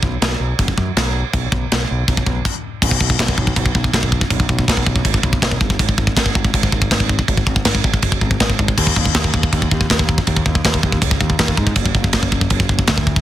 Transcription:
0.03 0.16 B1 medium
0.03 kick medium
0.21 0.34 B1 loud
0.21 snare loud
0.21 china medium
0.40 0.53 B1 medium
0.59 0.72 F#1 medium
0.59 kick loud
0.59 china medium
0.68 kick medium
0.78 0.91 F#2 medium
0.78 kick medium
0.97 1.22 B1 medium
0.97 snare loud
0.97 china medium
1.33 1.47 B1 medium
1.33 kick loud
1.33 china soft
1.52 1.65 B1 medium
1.52 kick medium
1.72 1.84 B1 loud
1.72 snare loud
1.72 china medium
1.91 2.03 B1 medium
2.08 2.21 B1 medium
2.08 kick loud
2.08 china soft
2.17 kick medium
2.26 2.40 B1 medium
2.26 kick medium
2.45 kick loud
2.45 crash medium
2.82 2.97 B1 medium
2.82 kick medium
2.82 crash loud
2.82 china medium
2.91 kick medium
3.00 3.16 B1 medium
3.00 kick medium
3.10 kick medium
3.19 3.34 B1 loud
3.19 kick medium
3.19 snare loud
3.19 china medium
3.28 kick medium
3.38 3.53 B1 medium
3.38 kick medium
3.47 kick medium
3.56 3.71 B1 medium
3.56 kick medium
3.56 china medium
3.66 kick medium
3.75 3.90 B1 loud
3.75 kick medium
3.84 kick medium
3.93 4.23 B1 medium
3.93 kick medium
3.93 snare loud
3.93 china medium
4.03 kick medium
4.12 kick medium
4.21 kick loud
4.30 4.45 B1 medium
4.30 kick medium
4.30 china medium
4.40 kick medium
4.49 4.64 B1 medium
4.49 kick medium
4.59 kick medium
4.68 4.83 B1 loud
4.68 kick medium
4.68 snare loud
4.68 china medium
4.77 kick medium
4.86 5.01 B1 medium
4.86 kick medium
4.96 kick medium
5.05 5.20 G#1 loud
5.05 kick medium
5.05 china medium
5.14 kick medium
5.23 5.38 B1 loud
5.23 kick medium
5.33 kick medium
5.42 5.57 B1 medium
5.42 kick medium
5.42 snare loud
5.42 china medium
5.51 kick medium
5.61 5.76 G1 medium
5.61 kick medium
5.70 kick medium
5.79 5.94 G#1 loud
5.79 kick medium
5.79 china medium
5.89 kick medium
5.98 6.13 G#1 medium
5.98 kick medium
6.07 kick medium
6.17 6.32 G#1 loud
6.17 kick loud
6.17 snare loud
6.17 china medium
6.26 kick medium
6.35 6.50 G#1 medium
6.35 kick medium
6.45 kick medium
6.54 6.69 G#1 loud
6.54 kick medium
6.54 china medium
6.63 kick loud
6.72 6.87 G#1 loud
6.72 kick medium
6.82 kick medium
6.91 7.20 G#1 loud
6.91 kick medium
6.91 snare loud
6.91 china medium
7.00 kick medium
7.09 kick medium
7.19 kick loud
7.28 7.43 G#1 medium
7.28 kick medium
7.28 china medium
7.37 kick medium
7.47 7.62 G#1 medium
7.47 kick medium
7.56 kick medium
7.65 7.80 G#1 medium
7.65 kick medium
7.65 snare loud
7.65 china medium
7.75 kick medium
7.84 7.99 G#1 loud
7.84 kick medium
7.94 kick medium
8.02 8.18 F#1 medium
8.02 kick medium
8.02 china medium
8.12 kick medium
8.21 8.37 G#1 medium
8.21 kick medium
8.31 kick medium
8.40 8.55 G#1 loud
8.40 kick medium
8.40 snare loud
8.40 china medium
8.50 kick medium
8.59 8.74 G#1 loud
8.59 kick medium
8.68 kick loud
8.78 8.92 D#2 medium
8.78 kick medium
8.78 crash loud
8.78 china medium
8.87 kick medium
8.96 9.11 D#2 medium
8.96 kick medium
9.06 kick medium
9.14 9.30 D#2 loud
9.14 kick medium
9.14 snare loud
9.14 china medium
9.24 kick medium
9.34 9.49 D#2 medium
9.34 kick medium
9.43 kick medium
9.53 9.68 D#2 loud
9.53 kick medium
9.53 china medium
9.62 kick medium
9.71 9.86 D#2 medium
9.71 kick medium
9.81 kick medium
9.90 10.19 D#2 medium
9.90 kick medium
9.90 snare loud
9.90 china medium
9.99 kick medium
10.09 kick medium
10.18 kick medium
10.27 10.42 D#2 loud
10.27 kick medium
10.27 china medium
10.37 kick medium
10.46 10.61 D#2 medium
10.46 kick medium
10.55 kick medium
10.65 10.80 D#2 loud
10.65 kick medium
10.65 snare loud
10.65 china medium
10.74 kick medium
10.83 10.98 D#2 medium
10.83 kick medium
10.92 kick medium
11.02 11.17 C#2 medium
11.02 kick medium
11.02 china medium
11.11 kick loud
11.21 11.35 D#2 loud
11.21 kick medium
11.30 kick medium
11.39 11.54 D#2 medium
11.39 kick medium
11.39 snare loud
11.39 china medium
11.48 kick medium
11.57 11.72 G#2 medium
11.57 kick medium
11.67 kick medium
11.76 11.91 F#1 loud
11.76 kick medium
11.76 china medium
11.86 kick medium
11.95 12.10 F#1 medium
11.95 kick medium
12.04 kick medium
12.13 12.29 F#1 loud
12.13 kick medium
12.13 snare loud
12.13 china medium
12.23 kick medium
12.32 12.47 F#1 medium
12.32 kick medium
12.41 kick medium
12.50 12.66 F#1 loud
12.50 kick medium
12.50 china medium
12.60 kick loud
12.69 12.85 F#1 loud
12.69 kick medium
12.79 kick medium
12.87 13.18 D2 loud
12.87 kick medium
12.87 snare loud
12.87 china medium
12.98 kick medium
13.07 kick medium
13.16 kick medium

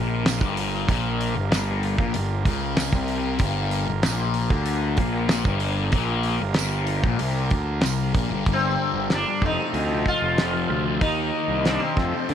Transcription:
0.00 0.39 A#1 medium
0.00 0.41 A#2 medium
0.00 8.45 G3 soft
0.00 8.45 A#3 medium
0.00 8.45 F4 medium
0.00 8.45 A#4 medium
0.26 snare loud
0.26 open hi-hat medium
0.26 tambourine medium
0.41 0.85 G1 medium
0.41 0.89 G2 medium
0.41 kick loud
0.57 open hi-hat medium
0.89 1.33 A#1 medium
0.89 1.36 A#2 loud
0.89 kick loud
0.89 open hi-hat medium
1.21 open hi-hat medium
1.36 1.51 G1 medium
1.36 1.50 G2 medium
1.51 1.96 G1 medium
1.51 1.98 G2 loud
1.51 snare loud
1.51 open hi-hat medium
1.51 tambourine medium
1.83 open hi-hat medium
1.98 2.14 A#1 medium
1.98 2.15 A#2 medium
1.98 kick medium
2.14 2.45 G1 medium
2.14 2.41 G2 medium
2.14 open hi-hat medium
2.45 2.90 C#2 medium
2.45 2.94 C#3 loud
2.45 kick medium
2.45 open hi-hat medium
2.77 snare loud
2.77 open hi-hat medium
2.77 tambourine medium
2.92 3.38 C2 loud
2.92 3.41 C3 medium
2.92 kick medium
3.08 open hi-hat medium
3.39 3.85 G1 medium
3.39 3.88 G2 medium
3.39 kick loud
3.39 open hi-hat medium
3.71 open hi-hat medium
3.88 4.04 G1 medium
3.88 4.05 G2 medium
4.03 4.49 A#1 medium
4.03 4.51 A#2 loud
4.03 snare loud
4.03 open hi-hat medium
4.03 tambourine medium
4.34 open hi-hat medium
4.50 4.95 D2 medium
4.50 4.99 D3 loud
4.50 kick medium
4.66 open hi-hat medium
4.97 5.43 A#1 medium
4.97 5.46 A#2 loud
4.97 kick loud
4.97 open hi-hat medium
5.29 snare loud
5.29 open hi-hat medium
5.29 tambourine medium
5.45 5.90 G1 loud
5.45 5.93 G2 medium
5.45 kick loud
5.60 open hi-hat medium
5.92 6.38 A#1 medium
5.92 6.41 A#2 loud
5.92 kick medium
5.92 open hi-hat medium
6.23 open hi-hat medium
6.41 6.57 G1 medium
6.41 6.57 G2 medium
6.54 7.02 G1 medium
6.54 7.05 G2 loud
6.54 snare medium
6.54 open hi-hat medium
6.59 tambourine loud
6.87 open hi-hat medium
7.03 7.19 A#1 medium
7.03 7.21 A#2 loud
7.03 kick medium
7.19 7.50 C2 medium
7.19 7.52 C3 medium
7.19 open hi-hat medium
7.50 7.81 D2 medium
7.50 7.83 D3 medium
7.50 kick medium
7.50 open hi-hat soft
7.81 8.13 C2 medium
7.81 8.15 C3 medium
7.81 snare loud
7.81 open hi-hat medium
7.86 tambourine medium
8.14 8.29 A#1 medium
8.14 8.32 A#2 loud
8.14 kick loud
8.14 open hi-hat medium
8.30 8.46 G1 medium
8.30 8.46 G2 medium
8.46 8.75 G1 loud
8.46 9.10 G2 medium
8.46 9.11 D3 medium
8.46 9.42 F3 medium
8.46 9.13 G3 medium
8.46 9.43 A#3 soft
8.46 9.43 D4 medium
8.46 9.43 G4 soft
8.46 9.43 A#4 medium
8.46 kick medium
8.46 open hi-hat soft
8.53 9.16 C4 medium
8.94 9.23 G1 medium
9.10 9.41 G2 medium
9.10 9.29 D3 medium
9.10 9.26 G3 loud
9.10 snare medium
9.10 open hi-hat soft
9.15 9.45 D4 medium
9.27 9.43 D3 medium
9.27 9.41 G3 medium
9.41 9.56 F1 medium
9.41 9.91 F2 medium
9.41 9.61 C3 medium
9.41 12.34 F3 medium
9.41 9.59 F3 medium
9.41 11.01 A3 soft
9.41 11.01 C4 soft
9.41 11.01 A4 soft
9.41 11.01 C5 medium
9.41 kick medium
9.46 10.08 D#4 medium
9.60 9.93 C3 soft
9.60 9.90 F3 medium
9.73 10.02 D2 medium
9.73 open hi-hat soft
9.91 10.07 C3 medium
9.91 10.09 F3 medium
10.06 10.37 F2 medium
10.06 10.39 C3 medium
10.06 10.41 F3 medium
10.06 11.01 F4 loud
10.06 kick medium
10.22 10.65 F1 medium
10.38 10.68 F2 medium
10.38 10.56 C3 medium
10.38 10.53 F3 medium
10.38 snare loud
10.38 open hi-hat soft
10.54 10.70 C3 soft
10.54 10.72 F3 medium
10.69 10.98 D2 medium
10.69 11.00 F2 medium
10.69 10.86 C3 medium
10.69 10.85 F3 medium
10.85 11.01 C3 medium
10.85 11.03 F3 medium
11.01 11.30 D#2 medium
11.01 11.65 D#3 medium
11.01 11.66 A#3 medium
11.01 11.98 A#3 soft
11.01 11.65 D#4 medium
11.01 11.68 D#4 medium
11.01 11.98 D#4 soft
11.01 11.98 A#4 soft
11.01 11.98 D#5 medium
11.01 kick loud
11.01 open hi-hat soft
11.48 11.77 C2 medium
11.65 11.96 D#3 medium
11.65 11.83 A#3 medium
11.65 11.72 C4 medium
11.65 11.81 D#4 medium
11.65 snare medium
11.65 open hi-hat soft
11.73 11.80 D4 medium
11.80 12.34 C4 medium
11.80 11.96 D#4 medium
11.85 11.97 A#3 soft
11.97 12.11 F2 medium
11.97 12.34 F2 medium
11.97 12.16 C3 medium
11.97 12.34 A3 medium
11.97 12.34 C4 medium
11.97 12.34 A4 medium
11.97 12.34 C5 medium
11.97 kick medium
11.97 snare soft
12.01 12.13 F3 medium
12.14 12.34 C3 medium
12.14 12.34 F3 medium
12.29 12.34 D3 medium
12.29 open hi-hat soft

